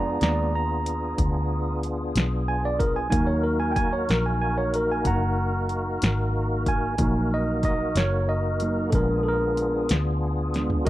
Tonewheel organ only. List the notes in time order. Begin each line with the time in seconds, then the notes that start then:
Already playing: B3 D4 F4 G#4
3.11 A#3 D#4 F#4 A#4
6.98 A#3 D#4 F#4 A#4
8.93 B3 D4 F4 G#4